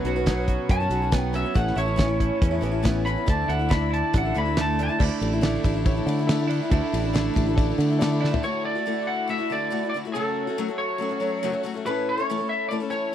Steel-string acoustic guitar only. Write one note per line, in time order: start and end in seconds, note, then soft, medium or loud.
0.05 0.16 F#3 medium
0.05 0.16 B3 medium
0.05 0.16 C#4 medium
0.05 0.15 F#4 medium
0.16 0.26 B3 medium
0.16 0.26 C#4 medium
0.16 0.27 F#4 medium
0.26 0.80 B2 medium
0.26 0.81 F#3 medium
0.26 0.81 B3 loud
0.26 0.80 C#4 loud
0.26 0.79 F#4 medium
0.80 0.89 B3 soft
0.80 0.90 C#4 medium
0.80 0.91 F#4 medium
0.90 1.01 F#3 medium
0.90 1.02 B3 medium
0.90 1.02 C#4 medium
0.90 1.01 F#4 medium
1.02 1.11 B3 soft
1.02 1.12 C#4 medium
1.02 1.12 F#4 medium
1.12 1.34 B2 medium
1.12 1.32 F#3 medium
1.12 1.33 B3 medium
1.12 1.33 C#4 medium
1.12 1.34 F#4 medium
1.33 1.44 F#3 medium
1.33 1.45 B3 medium
1.33 1.43 C#4 medium
1.33 1.42 F#4 medium
1.43 1.54 B3 medium
1.43 1.55 C#4 medium
1.43 1.55 F#4 medium
1.54 1.76 A2 medium
1.54 1.74 E3 medium
1.54 1.76 B3 medium
1.54 1.76 C#4 medium
1.54 1.77 E4 medium
1.75 1.87 E3 medium
1.75 1.87 B3 medium
1.75 1.86 C#4 medium
1.75 1.84 E4 medium
1.86 1.96 B3 medium
1.86 1.97 C#4 medium
1.86 1.97 E4 medium
1.96 2.08 A2 medium
1.96 2.09 E3 medium
1.96 2.09 B3 medium
1.96 2.08 C#4 medium
1.96 2.06 E4 medium
2.07 2.53 B3 soft
2.07 2.51 C#4 medium
2.07 2.50 E4 medium
2.51 2.61 B3 medium
2.51 2.61 C#4 medium
2.51 2.62 E4 medium
2.61 2.73 E3 medium
2.61 2.73 B3 medium
2.61 2.71 C#4 medium
2.61 2.70 E4 medium
2.72 2.82 B3 medium
2.72 2.82 C#4 medium
2.72 2.83 E4 medium
2.83 3.05 A2 medium
2.83 3.04 E3 loud
2.83 3.05 B3 loud
2.83 3.06 C#4 loud
2.83 3.06 E4 loud
3.05 3.16 E3 medium
3.05 3.17 B3 medium
3.05 3.16 C#4 medium
3.05 3.15 E4 medium
3.16 3.27 B3 soft
3.16 3.27 C#4 medium
3.16 3.27 E4 medium
3.26 3.48 D3 medium
3.26 3.49 A3 medium
3.26 3.49 D4 medium
3.26 3.49 E4 medium
3.49 3.60 D3 medium
3.49 3.60 A3 medium
3.49 3.59 D4 medium
3.49 3.58 E4 medium
3.59 3.68 A3 soft
3.59 3.69 D4 medium
3.59 3.70 E4 medium
3.69 3.80 D3 medium
3.69 3.81 A3 medium
3.69 3.80 D4 medium
3.69 3.78 E4 medium
3.80 4.25 A3 soft
3.80 4.24 D4 soft
3.80 4.22 E4 medium
4.23 4.35 A3 soft
4.23 4.35 D4 soft
4.23 4.34 E4 soft
4.34 4.45 D3 medium
4.34 4.46 A3 medium
4.34 4.45 D4 medium
4.34 4.44 E4 medium
4.45 4.57 A3 soft
4.45 4.57 D4 medium
4.45 4.56 E4 medium
4.58 4.78 D3 medium
4.58 4.78 A3 medium
4.58 4.79 D4 medium
4.58 4.80 E4 medium
4.79 4.89 D3 medium
4.79 4.89 A3 medium
4.79 4.89 D4 medium
4.79 4.88 E4 medium
4.89 4.99 A3 soft
4.89 5.00 D4 medium
4.89 4.99 E4 medium
4.99 5.19 D3 medium
4.99 5.20 A3 medium
4.99 5.21 D4 medium
4.99 5.22 E4 medium
5.20 5.31 D3 medium
5.20 5.32 A3 medium
5.20 5.32 D4 medium
5.20 5.31 E4 medium
5.32 5.41 A3 medium
5.32 5.42 D4 medium
5.32 5.42 E4 medium
5.41 5.62 D3 medium
5.41 5.63 A3 medium
5.41 5.64 D4 medium
5.41 5.64 E4 loud
5.63 5.74 D3 medium
5.63 5.75 A3 medium
5.63 5.74 D4 medium
5.63 5.73 E4 medium
5.74 5.97 A3 medium
5.74 5.96 D4 medium
5.74 5.94 E4 medium
5.95 6.07 A3 soft
5.95 6.07 D4 medium
5.95 6.06 E4 medium
6.07 6.18 D3 medium
6.07 6.18 A3 medium
6.07 6.18 D4 medium
6.07 6.18 E4 medium
6.19 6.29 A3 medium
6.19 6.30 D4 medium
6.19 6.29 E4 medium
6.29 6.40 D3 medium
6.29 6.40 A3 loud
6.29 6.40 D4 medium
6.29 6.38 E4 medium
6.39 6.62 A3 medium
6.39 6.61 D4 medium
6.39 6.60 E4 medium
6.62 6.71 A3 soft
6.62 6.72 D4 medium
6.62 6.72 E4 medium
6.71 6.92 D3 medium
6.71 6.93 A3 medium
6.71 6.94 D4 medium
6.71 6.94 E4 loud
6.93 7.04 D3 medium
6.93 7.04 A3 medium
6.93 7.04 D4 medium
6.93 7.01 E4 medium
7.03 7.13 A3 soft
7.03 7.13 D4 medium
7.03 7.13 E4 medium
7.13 7.32 D3 loud
7.13 7.34 A3 medium
7.13 7.35 D4 loud
7.13 7.35 E4 medium
7.33 7.45 D3 medium
7.33 7.46 A3 medium
7.33 7.47 D4 medium
7.33 7.45 E4 medium
7.46 7.70 A3 medium
7.46 7.69 D4 medium
7.46 7.68 E4 medium
7.69 7.79 A3 medium
7.69 7.80 D4 soft
7.69 7.79 E4 medium
7.78 7.89 D3 medium
7.78 7.90 A3 medium
7.78 7.90 D4 medium
7.78 7.89 E4 medium
7.90 8.00 A3 medium
7.90 8.01 D4 medium
7.90 8.00 E4 medium
8.01 8.11 D3 loud
8.01 8.11 A3 loud
8.01 8.11 D4 medium
8.01 8.09 E4 loud
8.11 8.33 A3 medium
8.11 8.32 D4 medium
8.11 8.30 E4 medium
8.31 8.43 A3 soft
8.31 8.43 D4 medium
8.31 8.43 E4 medium
8.43 8.75 D3 medium
8.43 8.76 A3 medium
8.43 8.75 E4 medium
8.43 8.74 F#4 medium
8.75 8.86 A3 medium
8.75 8.85 E4 medium
8.75 8.86 F#4 medium
8.86 9.26 D3 medium
8.86 9.29 A3 medium
8.86 9.28 E4 medium
8.86 9.30 F#4 medium
9.27 9.39 D3 medium
9.27 9.39 A3 medium
9.27 9.38 E4 medium
9.27 9.37 F#4 medium
9.38 9.50 A3 soft
9.38 9.50 E4 soft
9.38 9.50 F#4 medium
9.50 9.69 D3 medium
9.50 9.70 A3 medium
9.50 9.71 E4 medium
9.50 9.71 F#4 medium
9.70 9.82 D3 medium
9.70 9.82 A3 medium
9.70 9.83 E4 medium
9.70 9.82 F#4 medium
9.83 9.94 A3 soft
9.83 9.94 E4 medium
9.83 9.93 F#4 medium
9.94 10.04 D3 medium
9.94 10.05 A3 medium
9.94 10.05 E4 medium
9.94 10.04 F#4 medium
10.05 10.14 A3 soft
10.05 10.15 E4 soft
10.05 10.15 F#4 medium
10.14 10.47 F#2 medium
10.14 10.47 C#3 medium
10.14 10.47 F#3 medium
10.14 10.47 A3 medium
10.14 10.47 C#4 medium
10.14 10.46 F#4 medium
10.47 10.57 F#3 soft
10.47 10.57 A3 medium
10.47 10.57 C#4 medium
10.47 10.58 F#4 medium
10.58 10.69 F#2 medium
10.58 10.69 C#3 medium
10.58 10.69 F#3 medium
10.58 10.69 A3 medium
10.58 10.68 C#4 medium
10.58 10.67 F#4 medium
10.68 10.97 F#3 soft
10.68 10.98 A3 soft
10.68 10.99 C#4 soft
10.68 11.01 F#4 medium
10.98 11.10 F#3 medium
10.98 11.09 A3 medium
10.98 11.10 C#4 medium
10.98 11.08 F#4 medium
11.09 11.19 F#3 soft
11.09 11.19 A3 soft
11.09 11.20 C#4 soft
11.09 11.21 F#4 soft
11.20 11.42 F#3 medium
11.20 11.43 A3 medium
11.20 11.43 C#4 medium
11.20 11.44 F#4 medium
11.43 11.54 F#2 medium
11.43 11.54 C#3 loud
11.43 11.53 F#3 medium
11.43 11.52 A3 loud
11.43 11.51 C#4 medium
11.43 11.51 F#4 loud
11.52 11.62 F#3 medium
11.52 11.63 A3 medium
11.52 11.63 C#4 medium
11.52 11.64 F#4 medium
11.63 11.75 F#3 medium
11.63 11.75 A3 medium
11.63 11.74 C#4 medium
11.63 11.73 F#4 medium
11.74 11.86 F#3 soft
11.74 11.85 A3 medium
11.74 11.86 C#4 medium
11.74 11.85 F#4 medium
11.86 12.18 A2 medium
11.86 12.18 E3 medium
11.86 12.19 A3 medium
11.86 12.18 C#4 medium
11.86 12.16 A4 medium
12.17 12.29 A3 medium
12.17 12.30 C#4 medium
12.17 12.29 A4 medium
12.30 12.40 A2 medium
12.30 12.40 E3 medium
12.30 12.40 A3 medium
12.30 12.38 C#4 loud
12.30 12.36 A4 medium
12.37 12.70 A3 soft
12.37 12.71 C#4 medium
12.37 12.71 A4 medium
12.71 12.82 E3 medium
12.71 12.82 A3 medium
12.71 12.80 C#4 medium
12.71 12.79 A4 medium
12.80 12.90 A3 soft
12.80 12.91 C#4 medium
12.80 12.91 A4 medium
12.90 13.12 E3 medium
12.90 13.12 A3 medium
12.90 13.14 C#4 medium
12.90 13.13 A4 medium